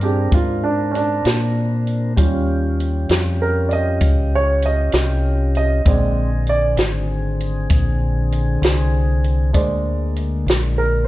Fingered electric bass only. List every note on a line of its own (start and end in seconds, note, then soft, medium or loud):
0.00 0.29 G2 medium
0.32 1.22 G#2 medium
1.25 2.15 A#2 medium
2.17 3.07 D#2 medium
3.10 3.99 F2 medium
4.01 4.91 C#2 medium
4.93 5.83 C2 medium
5.85 6.75 A#1 medium
6.77 7.67 G#1 medium
7.70 8.60 A#1 medium
8.62 9.51 C2 medium
9.55 10.44 D2 medium
10.46 11.08 A#1 medium